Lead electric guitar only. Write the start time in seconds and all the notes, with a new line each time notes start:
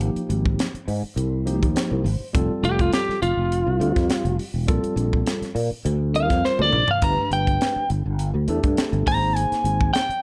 2.65 G4
2.81 F4
2.94 G4
3.22 F4
6.16 F5
6.45 C5
6.62 D5
6.91 F5
7.04 A#5
7.33 G5
9.08 A#5
9.36 G#5
9.93 G5